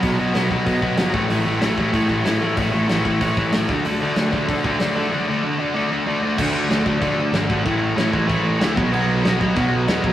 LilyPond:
<<
  \new Staff \with { instrumentName = "Overdriven electric guitar" } { \clef bass \time 4/4 \key d \major \tempo 4 = 189 <b, fis b>8 <b, fis b>8 <b, fis b>8 <b, fis b>8 <b, fis b>8 <b, fis b>8 <b, fis b>8 <a, e a>8 | <a, e a>8 <a, e a>8 <a, e a>8 <a, e a>8 <a, e a>8 <a, e a>8 <a, e a>8 <a, e a>8 | <a, e a>8 <a, e a>8 <a, e a>8 <a, e a>8 <a, e a>8 <a, e a>8 <a, e a>8 <d a d'>8 | <d a d'>8 <d a d'>8 <d a d'>8 <d a d'>8 <d a d'>8 <d a d'>8 <d a d'>8 <d a d'>8 |
<d a d'>8 <d a d'>8 <d a d'>8 <d a d'>8 <d a d'>8 <d a d'>8 <d a d'>8 <d a d'>8 | \key d \mixolydian <d a d'>4 <d a d'>8 <d a d'>8 <d a d'>4 <d a d'>8 <d a d'>8 | <a, e a>4 <a, e a>8 <a, e a>8 <a, e a>4 <a, e a>8 <b, fis b>8 | <b, fis b>4 <b, fis b>8 <b, fis b>8 <b, fis b>4 <b, fis b>8 <b, fis b>8 | }
  \new Staff \with { instrumentName = "Picked electric bass" } { \clef bass \time 4/4 \key d \major b,,8 b,,8 b,,8 b,,8 b,,8 b,,8 g,,8 a,,8 | a,,8 a,,8 a,,8 a,,8 a,8 a,,8 a,4 | a,,8 a,,8 a,,8 a,,8 a,,8 a,,8 a,,8 d,8 | d,8 d,8 d,8 d,8 d8 d,8 d4 |
r1 | \key d \mixolydian d,4 d,8 d,8 d,8 d,8 gis,,4 | a,,4 a,,8 a,,8 a,,8 a,,8 d,8 b,,8 | b,,4 b,,8 b,,8 b,,8 b,,8 e,4 | }
  \new DrumStaff \with { instrumentName = "Drums" } \drummode { \time 4/4 <hho bd>4 <hho sn>8 bd8 <hho bd>8 bd8 <hho sn>8 bd8 | hho4 <hho sn>8 bd8 <hho bd>8 bd8 <hho sn>4 | <hho bd>4 <hho sn>8 bd8 <hho bd>8 bd8 <hho sn>8 bd8 | hho4 <hho sn>8 bd8 <hho bd>8 bd8 <hho sn>4 |
r4 r4 r4 r4 | <cymc bd>4 <cymc sn>8 bd8 <cymc bd>4 <cymc sn>8 bd8 | <cymc bd>4 <cymc sn>8 bd8 <cymc bd>4 <cymc sn>8 bd8 | cymc4 <cymc sn>8 bd8 <cymc bd>4 <cymc sn>8 bd8 | }
>>